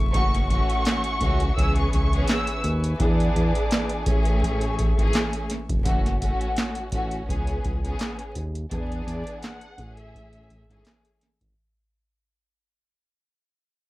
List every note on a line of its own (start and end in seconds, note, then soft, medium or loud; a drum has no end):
0.00 0.12 F1 loud
0.00 1.53 A3 medium
0.00 4.02 E5 medium
0.00 2.95 C#6 loud
0.13 0.61 F#1 loud
0.13 0.47 E3 loud
0.13 0.47 A3 medium
0.13 0.47 C#4 medium
0.13 0.47 F#4 loud
0.13 1.55 F#5 medium
0.13 0.46 C#6 loud
0.13 kick loud
0.13 closed hi-hat medium
0.35 snare soft
0.35 closed hi-hat medium
0.50 1.16 E3 loud
0.50 1.16 A3 medium
0.50 1.16 C#4 loud
0.50 1.17 F#4 loud
0.50 1.53 C#6 medium
0.50 kick medium
0.50 closed hi-hat medium
0.70 closed hi-hat medium
0.85 snare loud
0.85 clap medium
0.85 closed hi-hat medium
1.04 closed hi-hat medium
1.21 1.51 C#2 medium
1.21 1.56 E3 loud
1.21 1.57 A3 medium
1.21 1.56 C#4 medium
1.21 1.57 F#4 loud
1.21 kick medium
1.21 closed hi-hat medium
1.40 closed hi-hat medium
1.57 1.88 C#2 loud
1.57 2.08 E3 loud
1.57 2.08 B3 medium
1.57 2.08 C#4 medium
1.57 2.08 G#4 loud
1.57 4.05 B4 medium
1.57 5.82 G#5 medium
1.57 1.75 E6 medium
1.57 kick loud
1.57 closed hi-hat medium
1.76 1.91 C#6 medium
1.76 closed hi-hat medium
1.92 2.24 C#2 medium
1.92 2.25 C#6 medium
1.92 kick medium
1.92 closed hi-hat medium
2.12 2.60 E3 loud
2.12 2.60 B3 medium
2.12 2.60 C#4 loud
2.12 2.60 G#4 loud
2.12 closed hi-hat soft
2.28 2.61 E6 medium
2.28 snare loud
2.28 clap loud
2.28 closed hi-hat loud
2.47 closed hi-hat medium
2.64 2.95 D#2 loud
2.64 closed hi-hat medium
2.84 closed hi-hat medium
2.99 3.30 E2 loud
2.99 4.05 E3 loud
2.99 4.07 B3 medium
2.99 4.07 D4 loud
2.99 4.06 G#4 loud
2.99 4.06 D6 medium
2.99 kick loud
2.99 closed hi-hat medium
3.20 closed hi-hat medium
3.36 3.53 E2 loud
3.36 kick medium
3.36 closed hi-hat medium
3.55 closed hi-hat medium
3.71 snare loud
3.71 clap medium
3.71 closed hi-hat medium
3.89 closed hi-hat medium
4.06 4.94 A1 loud
4.06 4.90 E3 loud
4.06 4.90 A3 medium
4.06 5.84 A3 medium
4.06 4.90 C#4 medium
4.06 4.90 G#4 loud
4.06 5.84 E5 medium
4.06 5.84 C#6 medium
4.06 kick medium
4.06 closed hi-hat medium
4.25 closed hi-hat medium
4.43 kick loud
4.43 closed hi-hat medium
4.61 closed hi-hat medium
4.79 kick medium
4.79 closed hi-hat medium
4.98 5.12 G#1 medium
4.98 5.46 E3 loud
4.98 5.46 A3 medium
4.98 5.46 C#4 medium
4.98 5.46 G#4 loud
4.98 closed hi-hat soft
5.13 snare loud
5.13 clap loud
5.13 closed hi-hat loud
5.33 closed hi-hat medium
5.50 snare soft
5.50 closed hi-hat medium
5.69 5.83 F1 loud
5.69 kick medium
5.69 closed hi-hat medium
5.85 6.33 F#1 loud
5.85 6.18 E3 medium
5.85 6.18 A3 medium
5.85 6.19 C#4 medium
5.85 6.19 F#4 loud
5.85 kick loud
5.85 closed hi-hat medium
6.06 snare soft
6.06 closed hi-hat medium
6.22 6.88 E3 medium
6.22 6.88 A3 medium
6.22 6.88 C#4 medium
6.22 6.88 F#4 loud
6.22 kick medium
6.22 closed hi-hat medium
6.41 closed hi-hat medium
6.56 snare loud
6.56 clap medium
6.56 closed hi-hat medium
6.75 closed hi-hat soft
6.92 7.23 A1 medium
6.92 7.27 E3 medium
6.92 7.28 A3 medium
6.92 7.28 C#4 medium
6.92 7.29 F#4 loud
6.92 kick medium
6.92 closed hi-hat medium
7.11 closed hi-hat medium
7.29 7.59 C#2 loud
7.29 7.79 E3 medium
7.29 7.79 B3 medium
7.29 7.79 C#4 medium
7.29 7.80 G#4 loud
7.29 kick medium
7.29 closed hi-hat medium
7.47 closed hi-hat medium
7.65 7.95 C#2 medium
7.65 kick medium
7.65 closed hi-hat medium
7.84 8.32 E3 loud
7.84 8.32 B3 medium
7.84 8.32 C#4 medium
7.84 8.32 G#4 loud
7.84 closed hi-hat soft
7.99 snare loud
7.99 clap loud
7.99 closed hi-hat medium
8.19 closed hi-hat medium
8.35 8.66 D#2 medium
8.35 closed hi-hat medium
8.55 closed hi-hat medium
8.71 9.02 E2 loud
8.71 9.77 E3 loud
8.71 9.78 B3 medium
8.71 9.78 D4 medium
8.71 9.78 G#4 loud
8.71 kick loud
8.71 closed hi-hat medium
8.92 closed hi-hat soft
9.07 9.24 E2 medium
9.07 9.39 D5 medium
9.07 closed hi-hat medium
9.27 closed hi-hat medium
9.42 9.94 F#5 medium
9.42 snare loud
9.42 clap medium
9.42 closed hi-hat medium
9.61 closed hi-hat soft
9.78 10.65 A1 loud
9.78 10.61 E3 loud
9.78 10.62 A3 medium
9.78 10.62 C#4 medium
9.78 10.62 G#4 loud
9.78 kick medium
9.78 closed hi-hat medium
9.97 10.81 E5 medium
9.97 closed hi-hat medium
10.15 kick medium
10.15 closed hi-hat medium
10.33 closed hi-hat soft
10.50 kick medium
10.50 closed hi-hat medium
10.70 10.83 G#1 medium
10.70 11.17 E3 loud
10.70 11.18 A3 medium
10.70 11.18 C#4 medium
10.70 11.18 G#4 loud
10.70 closed hi-hat soft
10.85 snare loud
10.85 clap loud
10.85 closed hi-hat medium
11.05 closed hi-hat medium
11.21 snare soft
11.21 closed hi-hat medium
11.41 11.55 G#1 medium
11.41 kick medium
11.41 closed hi-hat soft